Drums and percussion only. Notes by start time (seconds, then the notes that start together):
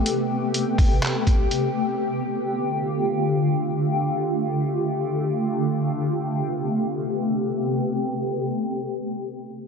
0.06 closed hi-hat
0.54 closed hi-hat
0.78 kick, open hi-hat
1.03 clap, closed hi-hat
1.27 kick, closed hi-hat
1.51 closed hi-hat